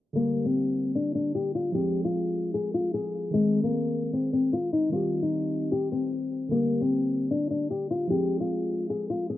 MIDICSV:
0, 0, Header, 1, 3, 480
1, 0, Start_track
1, 0, Tempo, 397351
1, 191, Time_signature, 4, 2, 24, 8
1, 11326, End_track
2, 0, Start_track
2, 0, Title_t, "Nylon-string guitar"
2, 0, Program_c, 0, 24
2, 191, Note_on_c, 0, 58, 104
2, 529, Note_off_c, 0, 58, 0
2, 550, Note_on_c, 0, 60, 81
2, 1115, Note_off_c, 0, 60, 0
2, 1151, Note_on_c, 0, 62, 84
2, 1342, Note_off_c, 0, 62, 0
2, 1389, Note_on_c, 0, 62, 79
2, 1581, Note_off_c, 0, 62, 0
2, 1629, Note_on_c, 0, 67, 86
2, 1821, Note_off_c, 0, 67, 0
2, 1870, Note_on_c, 0, 65, 81
2, 2061, Note_off_c, 0, 65, 0
2, 2109, Note_on_c, 0, 67, 96
2, 2448, Note_off_c, 0, 67, 0
2, 2470, Note_on_c, 0, 65, 75
2, 3035, Note_off_c, 0, 65, 0
2, 3069, Note_on_c, 0, 68, 81
2, 3261, Note_off_c, 0, 68, 0
2, 3311, Note_on_c, 0, 65, 71
2, 3502, Note_off_c, 0, 65, 0
2, 3551, Note_on_c, 0, 68, 82
2, 4002, Note_off_c, 0, 68, 0
2, 4031, Note_on_c, 0, 56, 114
2, 4370, Note_off_c, 0, 56, 0
2, 4390, Note_on_c, 0, 58, 81
2, 4955, Note_off_c, 0, 58, 0
2, 4991, Note_on_c, 0, 60, 90
2, 5182, Note_off_c, 0, 60, 0
2, 5231, Note_on_c, 0, 60, 81
2, 5422, Note_off_c, 0, 60, 0
2, 5471, Note_on_c, 0, 65, 94
2, 5662, Note_off_c, 0, 65, 0
2, 5711, Note_on_c, 0, 63, 83
2, 5902, Note_off_c, 0, 63, 0
2, 5949, Note_on_c, 0, 65, 98
2, 6289, Note_off_c, 0, 65, 0
2, 6311, Note_on_c, 0, 63, 69
2, 6875, Note_off_c, 0, 63, 0
2, 6910, Note_on_c, 0, 67, 97
2, 7101, Note_off_c, 0, 67, 0
2, 7151, Note_on_c, 0, 60, 92
2, 7828, Note_off_c, 0, 60, 0
2, 7870, Note_on_c, 0, 58, 104
2, 8209, Note_off_c, 0, 58, 0
2, 8231, Note_on_c, 0, 60, 78
2, 8795, Note_off_c, 0, 60, 0
2, 8831, Note_on_c, 0, 62, 83
2, 9022, Note_off_c, 0, 62, 0
2, 9069, Note_on_c, 0, 62, 78
2, 9261, Note_off_c, 0, 62, 0
2, 9309, Note_on_c, 0, 67, 87
2, 9501, Note_off_c, 0, 67, 0
2, 9551, Note_on_c, 0, 65, 80
2, 9742, Note_off_c, 0, 65, 0
2, 9789, Note_on_c, 0, 67, 95
2, 10129, Note_off_c, 0, 67, 0
2, 10151, Note_on_c, 0, 65, 71
2, 10715, Note_off_c, 0, 65, 0
2, 10750, Note_on_c, 0, 68, 81
2, 10941, Note_off_c, 0, 68, 0
2, 10992, Note_on_c, 0, 65, 72
2, 11182, Note_off_c, 0, 65, 0
2, 11231, Note_on_c, 0, 68, 83
2, 11326, Note_off_c, 0, 68, 0
2, 11326, End_track
3, 0, Start_track
3, 0, Title_t, "Synth keys"
3, 0, Program_c, 1, 88
3, 158, Note_on_c, 1, 50, 66
3, 183, Note_on_c, 1, 55, 64
3, 208, Note_on_c, 1, 58, 61
3, 233, Note_on_c, 1, 67, 74
3, 457, Control_c, 1, 64, 127
3, 2056, Note_off_c, 1, 50, 0
3, 2069, Note_off_c, 1, 55, 0
3, 2074, Note_on_c, 1, 53, 67
3, 2082, Note_off_c, 1, 58, 0
3, 2094, Note_off_c, 1, 67, 0
3, 2099, Note_on_c, 1, 56, 61
3, 2124, Note_on_c, 1, 60, 59
3, 2125, Control_c, 1, 64, 0
3, 2148, Note_on_c, 1, 68, 73
3, 2374, Control_c, 1, 64, 127
3, 3974, Note_off_c, 1, 53, 0
3, 3987, Note_off_c, 1, 56, 0
3, 3994, Note_on_c, 1, 51, 69
3, 3999, Note_off_c, 1, 60, 0
3, 4012, Note_off_c, 1, 68, 0
3, 4019, Note_on_c, 1, 56, 60
3, 4044, Note_on_c, 1, 60, 62
3, 4046, Control_c, 1, 64, 0
3, 4069, Note_on_c, 1, 68, 72
3, 4259, Control_c, 1, 64, 127
3, 5894, Note_off_c, 1, 51, 0
3, 5907, Note_off_c, 1, 56, 0
3, 5910, Note_on_c, 1, 51, 64
3, 5919, Note_off_c, 1, 60, 0
3, 5932, Note_off_c, 1, 68, 0
3, 5935, Note_on_c, 1, 55, 67
3, 5960, Note_on_c, 1, 60, 64
3, 5969, Control_c, 1, 64, 0
3, 5985, Note_on_c, 1, 67, 77
3, 6163, Control_c, 1, 64, 127
3, 7812, Note_off_c, 1, 51, 0
3, 7825, Note_off_c, 1, 55, 0
3, 7837, Note_off_c, 1, 60, 0
3, 7837, Note_on_c, 1, 50, 66
3, 7850, Note_off_c, 1, 67, 0
3, 7863, Note_on_c, 1, 55, 65
3, 7885, Control_c, 1, 64, 0
3, 7887, Note_on_c, 1, 58, 63
3, 7912, Note_on_c, 1, 67, 77
3, 8110, Control_c, 1, 64, 127
3, 9736, Note_off_c, 1, 50, 0
3, 9748, Note_off_c, 1, 55, 0
3, 9753, Note_on_c, 1, 53, 65
3, 9761, Note_off_c, 1, 58, 0
3, 9774, Note_off_c, 1, 67, 0
3, 9778, Note_on_c, 1, 56, 58
3, 9802, Note_on_c, 1, 60, 61
3, 9807, Control_c, 1, 64, 0
3, 9827, Note_on_c, 1, 68, 75
3, 9994, Control_c, 1, 64, 127
3, 11326, Note_off_c, 1, 53, 0
3, 11326, Note_off_c, 1, 56, 0
3, 11326, Note_off_c, 1, 60, 0
3, 11326, Note_off_c, 1, 68, 0
3, 11326, End_track
0, 0, End_of_file